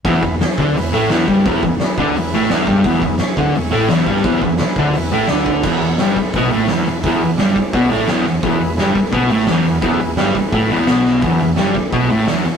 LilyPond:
<<
  \new Staff \with { instrumentName = "Transistor combo organ" } { \time 4/4 \key e \major \tempo 4 = 172 <e' gis' b'>4 <e' gis' cis''>4 <e' gis' b'>4 <e' gis' b'>4 | <e' gis' b'>4 <e' gis' b'>4 <e' gis' b'>4 <e' gis' cis''>4 | <e' gis' b'>4 <e' gis' cis''>4 <e' gis' cis''>4 <e' gis' b'>4 | <e' gis' b'>4 <e' gis' b'>4 <e' gis' b'>4 <e' gis' b'>4 |
\key e \mixolydian <e' gis' b'>4 <e' gis' b'>4 <e' gis' b'>4 <e' gis' b'>4 | <e' gis' b'>4 <e' gis' d''>4 <e' gis' d''>4 <e' gis' cis''>4 | <e' gis' b'>4 <e' gis' b'>4 <e' gis' b'>4 <e' gis' b'>4 | <e' gis' b'>4 <e' gis' b'>4 <e' gis' b'>4 <e' gis' b'>4 |
<e' gis' b'>4 <e' gis' d''>4 <e' gis' b'>4 <e' gis' cis''>4 | }
  \new Staff \with { instrumentName = "Distorted electric guitar" } { \clef bass \time 4/4 \key e \major <e, e>8 e,8 r8 <d d'>8 e,8 <a, a>8 <e, e>8 <g, g>8 | <e, e>8 e,8 r8 <d d'>8 e,8 <a, a>8 <e, e>8 <g, g>8 | <e, e>8 e,8 r8 <d d'>8 e,8 <a, a>8 <e, e>8 <g, g>8 | <e, e>8 e,8 r8 <d d'>8 e,8 <a, a>8 <d d'>4 |
\key e \mixolydian <e, e>8 e,8 <g, g>8 r8 <b, b>8 <a, a>8 <e, e>8 e,8 | <e, e>8 e,8 <g, g>8 r8 <b, b>8 <a, a>8 <e, e>8 e,8 | <e, e>8 e,8 <g, g>8 r8 <b, b>8 <a, a>8 <e, e>8 e,8 | <e, e>8 e,8 <g, g>8 r8 <a, a>8 <e, e>8 <b, b>4 |
<e, e>8 e,8 <g, g>8 r8 <b, b>8 <a, a>8 <e, e>8 e,8 | }
  \new Staff \with { instrumentName = "Fingered electric bass" } { \clef bass \time 4/4 \key e \major e,,8 e,,8 r8 d,8 e,,8 a,,8 e,,8 g,,8 | e,,8 e,,8 r8 d,8 e,,8 a,,8 e,,8 g,,8 | e,,8 e,,8 r8 d,8 e,,8 a,,8 e,,8 g,,8 | e,,8 e,,8 r8 d,8 e,,8 a,,8 d,4 |
\key e \mixolydian e,,8 e,,8 g,,8 r8 b,,8 a,,8 e,,8 e,,8 | e,,8 e,,8 g,,8 r8 b,,8 a,,8 e,,8 e,,8 | e,,8 e,,8 g,,8 r8 b,,8 a,,8 e,,8 e,,8 | e,,8 e,,8 g,,8 r8 a,,8 e,,8 b,,4 |
e,,8 e,,8 g,,8 r8 b,,8 a,,8 e,,8 e,,8 | }
  \new DrumStaff \with { instrumentName = "Drums" } \drummode { \time 4/4 <hho bd>8 bd8 <hho sn>8 bd8 hho4 <hho sn>8 bd8 | <hho bd>8 bd8 <hho sn>8 bd8 hho4 <hho sn>8 bd8 | <hho bd>8 bd8 <hho sn>8 bd8 hho4 <hho sn>8 bd16 sn16 | <hho bd>8 bd8 <hho sn>8 bd8 hho4 <hho sn>8 bd8 |
<cymc bd>8 hho8 <hho sn>8 <hho bd>16 sn16 <hho bd>8 hho8 <hho sn>8 hho8 | <hho bd>8 hho8 <hho sn>8 <hho bd>8 <hho bd>8 hho8 <hho sn>8 hho8 | <hho bd>8 hho8 <hho sn>8 <hho bd>16 sn16 <hho bd>8 hho8 <hho sn>8 hho8 | <hho bd>8 hho8 <hho sn>8 <hho bd>8 <hho bd>8 hho8 <hho sn>8 sn8 |
<hho bd>8 hho8 <hho sn>8 <hho bd>8 <hho bd>8 hho8 <hho sn>8 hho8 | }
>>